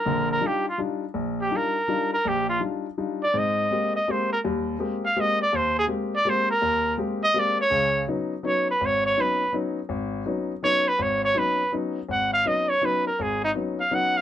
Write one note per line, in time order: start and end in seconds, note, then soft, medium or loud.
0.00 0.31 A#4 medium
0.06 0.37 A#1 medium
0.06 0.37 D3 medium
0.31 0.48 A#4 loud
0.41 0.66 G3 medium
0.41 0.66 D4 soft
0.41 0.67 D#4 soft
0.41 0.67 F4 medium
0.47 0.68 G4 medium
0.69 0.80 F4 medium
0.78 1.03 G3 medium
0.78 1.03 D4 medium
0.78 1.03 D#4 soft
0.78 1.04 F4 medium
1.14 1.46 A#1 medium
1.41 1.58 G4 medium
1.51 1.76 G3 soft
1.51 1.76 D4 medium
1.51 1.76 D#4 soft
1.51 1.77 F4 medium
1.57 2.13 A#4 medium
1.88 2.13 G3 medium
1.88 2.13 D4 medium
1.88 2.13 D#4 soft
1.88 2.13 F4 medium
2.14 2.30 A#4 medium
2.25 2.56 A#1 medium
2.25 2.49 G4 medium
2.49 2.61 F4 medium
2.60 2.85 G3 soft
2.60 2.85 D4 soft
2.60 2.86 D#4 soft
2.60 2.86 F4 medium
2.98 3.22 G3 medium
2.98 3.22 D4 soft
2.98 3.22 D#4 medium
2.98 3.23 F4 medium
3.23 3.40 D5 loud
3.34 3.65 G#2 medium
3.34 3.65 C4 medium
3.38 3.96 D#5 medium
3.71 3.95 G#3 medium
3.71 3.95 A#3 soft
3.71 3.96 C4 soft
3.71 3.96 G4 medium
3.96 4.13 D#5 medium
4.08 4.32 G#3 medium
4.08 4.32 A#3 medium
4.08 4.32 C4 soft
4.08 4.32 G4 medium
4.08 4.32 C5 medium
4.33 4.40 A#4 loud
4.44 4.75 D#2 medium
4.44 4.76 G3 medium
4.79 5.04 G#3 medium
4.79 5.04 A#3 soft
4.79 5.04 C4 medium
4.79 5.05 G4 medium
5.06 5.22 F5 medium
5.16 5.41 G#3 medium
5.16 5.41 A#3 medium
5.16 5.41 C4 soft
5.16 5.41 G4 medium
5.20 5.42 D#5 loud
5.42 5.57 D5 loud
5.53 5.84 D#2 medium
5.53 5.78 C5 loud
5.79 5.86 G#4 loud
5.87 6.13 G#3 medium
5.87 6.13 A#3 soft
5.87 6.13 C4 soft
5.87 6.13 G4 medium
6.16 6.31 D5 loud
6.25 6.50 G#3 medium
6.25 6.50 A#3 medium
6.25 6.50 C4 medium
6.25 6.50 G4 medium
6.30 6.50 C5 loud
6.51 6.96 A#4 loud
6.62 6.93 D#2 medium
6.98 7.23 G#3 medium
6.98 7.23 A#3 soft
6.98 7.23 C4 medium
6.98 7.23 G4 medium
7.24 7.41 D#5 loud
7.34 7.59 G#3 medium
7.34 7.59 A#3 medium
7.34 7.59 C4 medium
7.34 7.59 G4 medium
7.39 7.60 D5 loud
7.61 8.06 C#5 loud
7.70 8.02 C#2 medium
7.70 8.02 C#3 medium
8.07 8.32 F#3 medium
8.07 8.32 B3 soft
8.07 8.33 C#4 soft
8.07 8.32 D#4 medium
8.43 8.68 F#3 medium
8.43 8.68 B3 soft
8.43 8.68 C#4 medium
8.43 8.69 D#4 medium
8.43 8.67 C#5 medium
8.71 8.87 B4 medium
8.81 9.12 G#1 medium
8.86 9.06 C#5 medium
9.06 9.22 C#5 loud
9.17 9.42 F#3 medium
9.17 9.42 B3 soft
9.17 9.42 C#4 soft
9.17 9.42 D#4 medium
9.17 9.55 B4 medium
9.53 9.78 F#3 medium
9.53 9.78 B3 soft
9.53 9.78 C#4 medium
9.53 9.78 D#4 medium
9.89 10.21 G#1 medium
10.26 10.51 F#3 medium
10.26 10.51 B3 soft
10.26 10.51 C#4 soft
10.26 10.51 D#4 medium
10.63 10.87 F#3 medium
10.63 10.88 B3 medium
10.63 10.88 C#4 soft
10.63 10.88 D#4 medium
10.63 10.89 C#5 loud
10.88 11.04 B4 loud
10.99 11.31 G#1 medium
10.99 11.24 C#5 medium
11.25 11.40 C#5 loud
11.35 11.60 F#3 medium
11.35 11.60 B3 soft
11.35 11.60 C#4 soft
11.35 11.60 D#4 medium
11.35 11.74 B4 loud
11.72 11.97 F#3 medium
11.72 11.97 B3 medium
11.72 11.97 C#4 medium
11.72 11.97 D#4 medium
12.09 12.40 G#1 medium
12.09 12.32 F#5 medium
12.33 12.49 F5 loud
12.45 12.70 F#3 medium
12.45 12.70 B3 soft
12.45 12.70 C#4 soft
12.45 12.70 D#4 medium
12.45 12.71 D#5 loud
12.69 12.87 C#5 medium
12.82 13.06 F#3 medium
12.82 13.06 B3 medium
12.82 13.07 C#4 medium
12.82 13.07 D#4 medium
12.82 13.07 B4 medium
13.07 13.24 A#4 medium
13.19 13.50 G#1 medium
13.19 13.44 G#4 medium
13.44 13.52 D#4 loud
13.54 13.79 F#3 medium
13.54 13.80 B3 medium
13.54 13.80 C#4 soft
13.54 13.80 D#4 medium
13.80 13.96 F5 medium
13.91 14.16 F#3 medium
13.91 14.16 B3 medium
13.91 14.16 C#4 medium
13.91 14.16 D#4 medium
13.91 14.19 F#5 loud
14.17 14.21 F5 loud